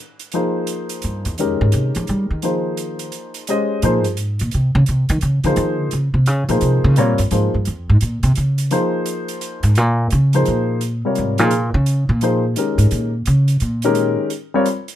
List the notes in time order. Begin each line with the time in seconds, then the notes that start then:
0.20 closed hi-hat
0.32 F3 A#3 D#4 G#4 C5, closed hi-hat
0.67 closed hi-hat
0.89 closed hi-hat
1.02 G2, closed hi-hat
1.25 E2, closed hi-hat
1.38 F2 D#3 G#3 C#4 G4 A#4, closed hi-hat
1.61 G#2
1.72 C3, closed hi-hat
1.95 F3, closed hi-hat
2.07 G3, closed hi-hat
2.31 D#3
2.42 F3 A#3 D#4 G#4 C5, closed hi-hat
2.77 closed hi-hat
2.99 closed hi-hat
3.12 closed hi-hat
3.34 closed hi-hat
3.47 G#3 C#4 G4 C5 D#5, closed hi-hat
3.82 A#2 F3 A#3 D#4 G#4 C5, closed hi-hat
4.04 G2, closed hi-hat
4.17 G#2, closed hi-hat
4.39 A#2, closed hi-hat
4.51 C3, closed hi-hat
4.75 C#3
4.86 C3, closed hi-hat
5.09 D#3, closed hi-hat
5.21 C#3, closed hi-hat
5.44 D3 F3 A#3 D#4 G#4 C5, closed hi-hat
5.56 D#3, closed hi-hat
5.79 D3
5.91 C#3, closed hi-hat
6.14 C3
6.26 C#3, closed hi-hat
6.49 A#2 F3 A#3 D#4 G#4 C5, closed hi-hat
6.61 C3, closed hi-hat
6.84 C#3
6.96 A#2 G3 C4 F4 A#4 C#5, closed hi-hat
7.18 G2, closed hi-hat
7.31 G#2 F3 A#3 D#4 G#4 C5, closed hi-hat
7.54 G2
7.65 F2, closed hi-hat
7.89 G#2
8.01 A#2, closed hi-hat
8.23 C3, closed hi-hat
8.35 C#3, closed hi-hat
8.58 closed hi-hat
8.71 F3 A#3 D#4 G#4 C5, closed hi-hat
9.06 closed hi-hat
9.28 closed hi-hat
9.41 closed hi-hat
9.63 G#2, closed hi-hat
9.75 A#2, closed hi-hat
10.10 C#3, closed hi-hat
10.33 F3 A#3 D#4 G#4 C5, closed hi-hat
10.45 A#2, closed hi-hat
10.81 closed hi-hat
11.05 C3 G3 F4 A#4 C#5
11.15 G#2, closed hi-hat
11.38 A#2 F3 A#3 D#4 G#4 A#4, closed hi-hat
11.51 closed hi-hat
11.74 C#3
11.86 closed hi-hat
12.09 A#2
12.21 F3 A#3 D#4 G#4 C5, closed hi-hat
12.56 D#3 G#3 C#4 G4 A#4, closed hi-hat
12.78 G#2, closed hi-hat
12.91 A#2, closed hi-hat
13.26 C#3, closed hi-hat
13.48 closed hi-hat
13.60 A#2, closed hi-hat
13.82 D#3 G#3 C#4 G4 A#4, closed hi-hat
13.95 closed hi-hat
14.30 closed hi-hat
14.54 G3 C4 F4 A#4 C#5
14.66 closed hi-hat
14.88 closed hi-hat